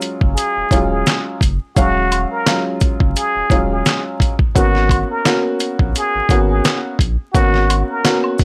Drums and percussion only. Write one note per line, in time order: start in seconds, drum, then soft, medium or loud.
0.01 closed hi-hat medium
0.01 maracas soft
0.21 kick loud
0.37 closed hi-hat loud
0.37 maracas medium
0.71 kick loud
0.71 closed hi-hat medium
0.71 maracas medium
1.06 snare loud
1.06 clap medium
1.06 closed hi-hat medium
1.06 maracas medium
1.41 kick medium
1.41 closed hi-hat medium
1.41 maracas medium
1.76 kick loud
1.76 closed hi-hat medium
1.76 maracas medium
2.12 closed hi-hat medium
2.12 high woodblock medium
2.12 maracas medium
2.46 snare loud
2.46 clap loud
2.46 closed hi-hat medium
2.46 maracas medium
2.80 kick loud
2.80 closed hi-hat medium
2.80 maracas medium
3.00 kick loud
3.16 closed hi-hat loud
3.16 maracas medium
3.50 kick loud
3.50 closed hi-hat medium
3.50 maracas medium
3.86 snare loud
3.86 clap medium
3.86 closed hi-hat medium
3.86 maracas medium
4.20 kick medium
4.20 closed hi-hat medium
4.20 maracas medium
4.39 kick loud
4.56 kick loud
4.56 closed hi-hat medium
4.56 maracas medium
4.75 snare soft
4.89 kick loud
4.89 closed hi-hat medium
4.89 high woodblock medium
4.89 maracas medium
5.25 snare loud
5.25 clap medium
5.25 closed hi-hat medium
5.25 maracas medium
5.60 closed hi-hat medium
5.60 maracas soft
5.79 kick loud
5.95 closed hi-hat loud
5.95 maracas medium
6.29 kick medium
6.29 closed hi-hat medium
6.29 maracas medium
6.65 snare loud
6.65 clap medium
6.65 closed hi-hat medium
6.65 maracas medium
6.99 kick medium
6.99 closed hi-hat medium
6.99 maracas medium
7.35 kick loud
7.35 closed hi-hat medium
7.35 maracas medium
7.54 snare soft
7.70 closed hi-hat medium
7.70 high woodblock medium
7.70 maracas medium
8.05 snare loud
8.05 clap loud
8.05 closed hi-hat medium
8.05 maracas medium
8.24 high woodblock medium
8.38 kick medium
8.38 open hi-hat soft
8.38 maracas soft